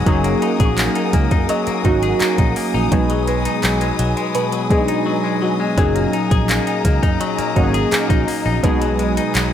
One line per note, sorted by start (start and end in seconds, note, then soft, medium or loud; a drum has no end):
0.00 0.14 B2 medium
0.00 0.24 G#3 medium
0.00 0.42 D#4 medium
0.00 2.88 F#5 medium
0.00 9.53 G#5 medium
0.00 8.59 D#6 medium
0.06 0.33 F#1 loud
0.06 0.99 F#3 medium
0.06 1.49 F#3 medium
0.06 0.99 A#3 medium
0.06 0.99 C#4 medium
0.06 1.00 D#4 medium
0.06 1.00 G#4 loud
0.06 2.89 A#4 medium
0.06 kick loud
0.06 closed hi-hat medium
0.24 0.76 A#3 medium
0.24 closed hi-hat medium
0.42 0.95 D#4 medium
0.42 2.94 A#5 medium
0.42 closed hi-hat medium
0.60 0.87 A#1 medium
0.60 2.02 G#4 medium
0.60 kick loud
0.60 closed hi-hat medium
0.65 3.14 C#6 medium
0.78 1.12 A#3 medium
0.78 clap loud
0.78 closed hi-hat medium
0.95 1.31 D#4 medium
0.95 closed hi-hat soft
1.13 1.27 C#2 loud
1.13 1.66 A#3 medium
1.13 3.24 G#5 medium
1.13 kick loud
1.13 closed hi-hat medium
1.31 1.45 F#2 medium
1.31 1.85 D#4 medium
1.31 kick medium
1.31 closed hi-hat soft
1.49 3.10 F#3 medium
1.49 3.24 D#5 medium
1.49 closed hi-hat medium
1.67 2.20 A#3 medium
1.67 muted fingered electric bass stroke soft
1.67 closed hi-hat medium
1.84 2.12 G#1 medium
1.84 2.54 F#3 medium
1.84 2.54 A#3 medium
1.84 2.55 C#4 medium
1.84 2.38 D#4 medium
1.84 2.55 D#4 medium
1.84 2.55 F#4 medium
1.84 kick medium
1.84 closed hi-hat soft
2.03 3.13 G#4 medium
2.03 closed hi-hat medium
2.20 2.55 A#3 medium
2.20 muted fingered electric bass stroke soft
2.20 clap loud
2.20 closed hi-hat medium
2.38 2.52 A#1 medium
2.38 2.74 D#4 medium
2.38 kick loud
2.38 closed hi-hat medium
2.56 2.99 A#3 medium
2.56 open hi-hat medium
2.74 2.88 A#1 medium
2.74 3.45 D#4 medium
2.91 3.46 B1 loud
2.91 4.34 B2 medium
2.91 3.85 F#3 medium
2.91 3.85 G#3 medium
2.91 3.85 B3 medium
2.91 3.85 D#4 medium
2.91 3.85 G#4 medium
2.91 5.75 B4 medium
2.91 9.53 D#5 medium
2.91 kick loud
2.91 closed hi-hat medium
3.10 3.63 F#3 medium
3.10 closed hi-hat medium
3.27 3.81 G#3 medium
3.27 4.34 B4 medium
3.27 closed hi-hat medium
3.45 4.88 D#4 medium
3.45 closed hi-hat medium
3.63 3.91 B1 medium
3.63 3.99 F#3 medium
3.63 clap loud
3.63 closed hi-hat medium
3.81 4.16 G#3 medium
3.81 closed hi-hat medium
3.99 4.13 B1 loud
3.99 4.52 F#3 medium
3.99 closed hi-hat medium
4.17 4.70 G#3 medium
4.17 closed hi-hat soft
4.35 5.85 B2 medium
4.35 6.09 B4 medium
4.35 closed hi-hat medium
4.52 5.06 F#3 medium
4.52 closed hi-hat medium
4.70 5.40 F#3 medium
4.70 5.40 G#3 medium
4.70 5.24 G#3 medium
4.70 5.40 B3 medium
4.70 4.77 D4 medium
4.70 5.41 G#4 medium
4.70 kick medium
4.70 closed hi-hat soft
4.78 5.44 D#4 medium
4.88 6.13 D#4 medium
4.88 closed hi-hat medium
5.06 5.41 F#3 medium
5.24 5.59 G#3 medium
5.42 5.77 F#3 medium
5.42 6.10 F#4 medium
5.60 5.95 G#3 medium
5.77 6.05 F#1 loud
5.77 6.71 A#2 medium
5.77 6.70 F#3 medium
5.77 7.20 F#3 medium
5.77 6.71 C#4 medium
5.77 6.71 D#4 medium
5.77 6.71 G#4 loud
5.77 8.61 A#5 medium
5.77 kick loud
5.77 closed hi-hat medium
5.95 6.48 A#3 medium
5.95 closed hi-hat medium
6.13 6.67 D#4 medium
6.13 closed hi-hat medium
6.31 6.58 A#1 medium
6.31 7.74 G#4 medium
6.31 kick loud
6.31 closed hi-hat medium
6.49 6.84 A#3 medium
6.49 clap loud
6.49 closed hi-hat medium
6.67 7.02 D#4 medium
6.67 closed hi-hat medium
6.85 6.98 C#2 loud
6.85 7.37 A#3 medium
6.85 kick loud
6.85 closed hi-hat medium
7.03 7.16 F#2 medium
7.03 7.56 D#4 medium
7.03 kick medium
7.03 closed hi-hat soft
7.21 8.81 F#3 medium
7.21 closed hi-hat medium
7.38 7.91 A#3 medium
7.38 muted fingered electric bass stroke soft
7.38 closed hi-hat medium
7.56 7.83 G#1 medium
7.56 8.26 F#3 medium
7.56 8.26 A#3 medium
7.56 8.26 C#4 medium
7.56 8.09 D#4 medium
7.56 8.26 D#4 medium
7.56 7.63 F#4 medium
7.56 kick medium
7.56 closed hi-hat soft
7.64 8.30 G#4 medium
7.74 8.84 G#4 medium
7.74 closed hi-hat medium
7.92 8.26 A#3 medium
7.92 8.95 G#4 medium
7.92 muted fingered electric bass stroke soft
7.92 clap loud
7.92 closed hi-hat medium
8.10 8.23 A#1 medium
8.10 8.45 D#4 medium
8.10 kick loud
8.10 closed hi-hat medium
8.28 8.71 A#3 medium
8.28 open hi-hat medium
8.46 8.59 A#1 medium
8.46 9.17 D#4 medium
8.63 9.18 B1 loud
8.63 9.53 B2 medium
8.63 9.53 F#3 medium
8.63 9.53 G#3 medium
8.63 9.53 B3 medium
8.63 9.53 D#4 medium
8.63 9.53 G#4 loud
8.63 9.53 B4 medium
8.63 9.53 D#6 medium
8.63 kick loud
8.63 closed hi-hat medium
8.81 9.35 F#3 medium
8.81 closed hi-hat medium
8.99 9.52 G#3 medium
8.99 closed hi-hat medium
9.17 9.53 D#4 medium
9.17 closed hi-hat medium
9.35 9.53 B1 medium
9.35 9.53 F#3 medium
9.35 clap loud
9.35 closed hi-hat medium